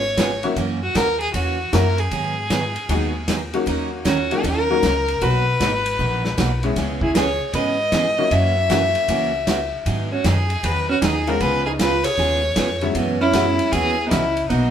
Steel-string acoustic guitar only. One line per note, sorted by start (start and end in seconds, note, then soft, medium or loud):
0.17 0.29 C#3 medium
0.17 0.29 G#3 medium
0.17 0.30 B3 medium
0.17 0.30 F4 medium
0.17 0.30 G#4 medium
0.57 0.79 C#3 medium
0.57 0.79 E3 medium
0.57 0.79 A#3 medium
0.57 0.79 C#4 medium
0.57 0.80 F#4 medium
0.95 1.07 C#3 medium
0.95 1.07 E3 medium
0.95 1.07 A#3 medium
0.95 1.07 C#4 medium
0.95 1.07 F#4 medium
1.34 1.56 C#3 medium
1.34 1.57 E3 medium
1.34 1.57 A#3 medium
1.34 1.57 C#4 medium
1.34 1.57 F#4 medium
1.72 1.84 C#3 medium
1.72 1.85 E3 medium
1.72 1.85 A#3 medium
1.72 1.85 C#4 medium
1.72 1.85 F#4 medium
2.11 2.34 D#3 medium
2.11 2.34 F#3 medium
2.11 2.34 B3 medium
2.11 2.34 D#4 medium
2.11 2.34 G#4 medium
2.50 2.62 D#3 medium
2.50 2.62 F#3 medium
2.50 2.62 B3 medium
2.50 2.63 D#4 medium
2.50 2.63 G#4 medium
2.89 3.11 D#3 medium
2.89 3.12 F#3 medium
2.89 3.12 B3 medium
2.89 3.12 D#4 medium
2.89 3.12 G#4 medium
3.28 3.40 D#3 medium
3.28 3.40 F#3 medium
3.28 3.40 B3 medium
3.28 3.40 D#4 medium
3.28 3.40 G#4 medium
3.66 3.88 D#3 medium
3.66 3.89 F#3 medium
3.66 3.89 C#4 medium
3.66 3.89 D#4 medium
3.66 3.89 A#4 medium
4.05 4.17 D#3 medium
4.05 4.17 F#3 medium
4.05 4.17 C#4 medium
4.05 4.17 D#4 medium
4.05 4.18 A#4 medium
4.43 4.66 D#3 medium
4.43 4.66 F#3 medium
4.43 4.66 C#4 medium
4.43 4.67 D#4 medium
4.43 4.67 A#4 medium
4.83 4.95 D#3 medium
4.83 4.95 F#3 medium
4.83 4.95 C#4 medium
4.83 4.95 D#4 medium
4.83 4.95 A#4 medium
5.21 5.43 B2 medium
5.21 5.44 F#3 medium
5.21 5.44 A#3 medium
5.21 5.44 D#4 medium
5.21 5.44 F#4 medium
5.60 5.72 B2 medium
5.60 5.72 F#3 medium
5.60 5.72 A#3 medium
5.60 5.72 D#4 medium
5.60 5.73 F#4 medium
5.99 6.21 B2 medium
5.99 6.22 F#3 medium
5.99 6.22 A#3 medium
5.99 6.22 D#4 medium
5.99 6.22 F#4 medium
6.37 6.49 B2 medium
6.37 6.50 F#3 medium
6.37 6.50 A#3 medium
6.37 6.50 D#4 medium
6.37 6.50 F#4 medium
6.76 6.99 C#3 medium
6.76 6.99 E3 medium
6.76 6.99 B3 medium
6.76 6.99 C#4 medium
6.76 6.99 G#4 medium
7.15 7.27 C#3 medium
7.15 7.27 E3 medium
7.15 7.27 B3 medium
7.15 7.27 C#4 medium
7.15 7.28 G#4 medium
7.54 7.76 C#3 soft
7.54 7.76 E3 medium
7.54 7.76 B3 medium
7.54 7.77 C#4 medium
7.54 7.77 G#4 medium
7.93 8.04 C#3 medium
7.93 8.05 E3 medium
7.93 8.05 B3 medium
7.93 8.05 C#4 medium
7.93 8.05 G#4 medium
8.31 8.53 C#3 medium
8.31 8.54 E3 medium
8.31 8.54 A#3 medium
8.31 8.54 C#4 medium
8.31 8.54 F#4 medium
8.70 8.82 C#3 medium
8.70 8.82 E3 medium
8.70 8.82 A#3 medium
8.70 8.82 C#4 medium
8.70 8.82 F#4 medium
9.09 9.31 C#3 soft
9.09 9.31 E3 medium
9.09 9.31 A#3 medium
9.09 9.31 C#4 medium
9.09 9.32 F#4 medium
9.47 9.59 C#3 medium
9.47 9.59 E3 medium
9.47 9.59 A#3 medium
9.47 9.59 C#4 medium
9.47 9.60 F#4 medium
9.86 10.08 D#3 medium
9.86 10.08 F#3 medium
9.86 10.08 B3 medium
9.86 10.08 D#4 medium
9.86 10.09 G#4 medium
10.25 10.37 D#3 medium
10.25 10.37 F#3 medium
10.25 10.37 B3 medium
10.25 10.37 D#4 medium
10.25 10.37 G#4 medium
10.63 10.85 D#3 medium
10.63 10.85 F#3 medium
10.63 10.86 B3 medium
10.63 10.86 D#4 medium
10.63 10.86 G#4 medium
11.02 11.14 D#3 medium
11.02 11.14 F#3 medium
11.02 11.14 B3 medium
11.02 11.14 D#4 medium
11.02 11.14 G#4 medium
11.41 11.63 C#3 medium
11.41 11.63 G#3 medium
11.41 11.63 B3 medium
11.41 11.63 F4 medium
11.41 11.63 G#4 medium
11.80 11.91 C#3 medium
11.80 11.91 G#3 medium
11.80 11.91 B3 medium
11.80 11.92 F4 medium
11.80 11.92 G#4 medium
12.18 12.40 C#3 medium
12.18 12.40 G#3 medium
12.18 12.40 B3 medium
12.18 12.41 F4 medium
12.18 12.41 G#4 medium
12.56 12.68 C#3 medium
12.56 12.68 G#3 medium
12.56 12.68 B3 medium
12.56 12.69 F4 medium
12.56 12.69 G#4 medium
12.95 13.17 B2 medium
12.95 13.18 E3 medium
12.95 13.18 B3 medium
12.95 13.18 C#4 medium
12.95 13.18 F#4 medium
13.34 13.46 B2 medium
13.34 13.46 E3 medium
13.34 13.46 B3 medium
13.34 13.46 C#4 medium
13.34 13.46 F#4 medium
13.73 13.95 B2 medium
13.73 13.95 E3 medium
13.73 13.95 B3 medium
13.73 13.95 C#4 medium
13.73 13.95 F#4 medium
14.11 14.23 B2 medium
14.11 14.23 E3 medium
14.11 14.23 B3 medium
14.11 14.23 C#4 medium
14.11 14.24 F#4 medium
14.50 14.71 B2 medium
14.50 14.71 F#3 medium
14.50 14.71 A#3 medium
14.50 14.71 D#4 medium
14.50 14.71 F#4 medium